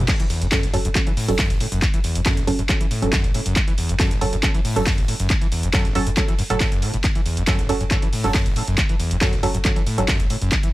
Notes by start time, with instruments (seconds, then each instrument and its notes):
0.08 acid bass F#2, kick, clap, closed hi-hat, crash, ride
0.20 sub bass F#1, acid bass E3, closed hi-hat
0.30 acid bass E2, open hi-hat, ride
0.42 sub bass F#1, acid bass F#2, closed hi-hat
0.52 acid bass F#2, synth stab F#3 C#4 A4, kick, snare, clap, closed hi-hat, ride
0.63 acid bass F#1, closed hi-hat
0.74 sub bass F#1, acid bass F#2, synth stab F#3 C#4 A4, open hi-hat, ride
0.85 sub bass F#1, acid bass F#2, closed hi-hat
0.95 synth stab F#3 C#4 A4, acid bass F#3, kick, clap, closed hi-hat, ride
1.07 sub bass F#1, acid bass E3, closed hi-hat
1.17 acid bass A2, open hi-hat
1.28 sub bass F#1, acid bass F#2, synth stab F#3 C#4 A4, closed hi-hat
1.39 acid bass F#2, kick, snare, clap, closed hi-hat, ride
1.50 sub bass F#1, acid bass F#1, closed hi-hat
1.60 acid bass A2, open hi-hat, ride
1.72 sub bass F#1, acid bass F#2, closed hi-hat
1.82 kick, clap, closed hi-hat, ride
1.94 sub bass F#1, acid bass E3, closed hi-hat
2.04 acid bass E2, open hi-hat, ride
2.15 sub bass F#1, acid bass F#2, closed hi-hat
2.25 acid bass F#2, synth stab F#3 C#4 A4, kick, snare, clap, closed hi-hat, ride
2.37 acid bass F#1, closed hi-hat
2.47 sub bass F#1, acid bass F#2, synth stab F#3 C#4 A4, open hi-hat, ride
2.59 sub bass F#1, acid bass F#2, closed hi-hat
2.69 synth stab F#3 C#4 A4, acid bass F#3, kick, clap, closed hi-hat, ride
2.81 sub bass F#1, acid bass E3, closed hi-hat
2.91 acid bass A2, open hi-hat, ride
3.02 sub bass F#1, acid bass F#2, synth stab F#3 C#4 A4, closed hi-hat
3.12 acid bass F#2, kick, snare, clap, closed hi-hat, ride
3.24 sub bass F#1, acid bass F#1, closed hi-hat
3.34 acid bass A2, open hi-hat, ride
3.46 sub bass F#1, acid bass F#2, closed hi-hat
3.56 kick, clap, closed hi-hat, ride
3.68 sub bass F#1, acid bass E3, closed hi-hat
3.78 acid bass E2, open hi-hat, ride
3.89 sub bass F#1, acid bass F#2, closed hi-hat
4.00 acid bass F#2, synth stab F#3 C#4 A4, kick, snare, clap, closed hi-hat, ride
4.11 acid bass F#1, closed hi-hat
4.21 sub bass F#1, acid bass F#2, synth stab F#3 C#4 A4, open hi-hat, ride
4.33 sub bass F#1, acid bass F#2, closed hi-hat
4.43 synth stab F#3 C#4 A4, acid bass F#3, kick, clap, closed hi-hat, ride
4.54 sub bass F#1, acid bass E3, closed hi-hat
4.65 acid bass A2, open hi-hat
4.76 sub bass F#1, acid bass F#2, synth stab F#3 C#4 A4, closed hi-hat
4.86 acid bass F#2, kick, snare, clap, closed hi-hat, ride
4.98 sub bass F#1, acid bass F#1, closed hi-hat
5.08 acid bass A2, open hi-hat, ride
5.19 sub bass F#1, acid bass F#2, closed hi-hat, ride
5.30 kick, clap, closed hi-hat, ride
5.41 sub bass F#1, acid bass E3, closed hi-hat
5.52 acid bass E2, open hi-hat, ride
5.63 sub bass F#1, acid bass F#2, closed hi-hat
5.73 acid bass F#2, synth stab F#3 C#4 A4, kick, snare, clap, closed hi-hat, ride
5.85 acid bass F#1, closed hi-hat
5.95 sub bass F#1, acid bass F#2, synth stab F#3 C#4 A4, open hi-hat, ride
6.07 sub bass F#1, acid bass F#2, closed hi-hat
6.17 acid bass F#3, synth stab F#3 C#4 A4, kick, clap, closed hi-hat, ride
6.28 sub bass F#1, acid bass E3, closed hi-hat
6.38 acid bass F#2, open hi-hat, ride
6.50 sub bass F#1, acid bass A2, synth stab F#3 C#4 A4, closed hi-hat
6.60 acid bass A2, kick, snare, clap, closed hi-hat, ride
6.72 sub bass F#1, acid bass F#2, closed hi-hat
6.82 acid bass A2, open hi-hat, ride
6.94 sub bass F#1, acid bass A2, closed hi-hat
7.04 acid bass F#2, kick, clap, closed hi-hat, ride
7.15 sub bass F#1, acid bass E3, closed hi-hat
7.26 acid bass E2, open hi-hat, ride
7.37 sub bass F#1, acid bass F#2, closed hi-hat
7.47 acid bass F#2, synth stab F#3 C#4 A4, kick, snare, clap, closed hi-hat, ride
7.59 acid bass F#1, closed hi-hat
7.69 sub bass F#1, acid bass F#2, synth stab F#3 C#4 A4, open hi-hat, ride
7.81 sub bass F#1, acid bass F#2, closed hi-hat
7.90 acid bass G2, synth stab F#3 C#4 A4, kick, clap, closed hi-hat, ride
8.02 sub bass F#1, acid bass E3, closed hi-hat
8.13 acid bass A2, open hi-hat
8.24 sub bass F#1, acid bass F#2, synth stab F#3 C#4 A4, closed hi-hat
8.34 acid bass F#2, kick, snare, clap, closed hi-hat, ride
8.46 acid bass F#1, sub bass F#1, closed hi-hat
8.56 acid bass A2, open hi-hat, ride
8.68 sub bass F#1, acid bass F#2, closed hi-hat
8.78 acid bass F#2, kick, clap, closed hi-hat, ride
8.89 sub bass F#1, acid bass E3, closed hi-hat
9.00 acid bass E2, open hi-hat, ride
9.11 sub bass F#1, acid bass F#2, closed hi-hat
9.21 acid bass F#2, synth stab F#3 C#4 A4, kick, snare, clap, closed hi-hat, ride
9.33 acid bass F#1, closed hi-hat
9.43 sub bass F#1, acid bass F#2, synth stab F#3 C#4 A4, open hi-hat, ride
9.55 sub bass F#1, acid bass F#2, closed hi-hat
9.65 acid bass G2, synth stab F#3 C#4 A4, kick, clap, closed hi-hat, ride
9.76 sub bass F#1, acid bass E3, closed hi-hat
9.87 acid bass A2, open hi-hat, ride
9.98 sub bass F#1, acid bass F#2, synth stab F#3 C#4 A4, closed hi-hat
10.08 acid bass F#2, kick, snare, clap, closed hi-hat, ride
10.20 sub bass F#1, acid bass F#1, closed hi-hat
10.30 acid bass A2, open hi-hat, ride
10.42 sub bass F#1, acid bass F#2, closed hi-hat
10.52 acid bass F#2, kick, clap, closed hi-hat, ride
10.63 sub bass F#1, acid bass E3, closed hi-hat